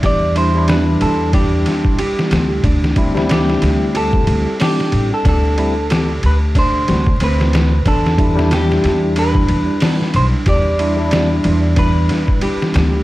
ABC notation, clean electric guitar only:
X:1
M:4/4
L:1/16
Q:"Swing 16ths" 1/4=92
K:Em
V:1 name="Clean electric guitar"
d2 c2 B2 A2 G6 z2 | z4 G4 A4 G3 A | A6 B2 c4 B4 | A4 G4 B6 c2 |
d6 z2 B6 z2 |]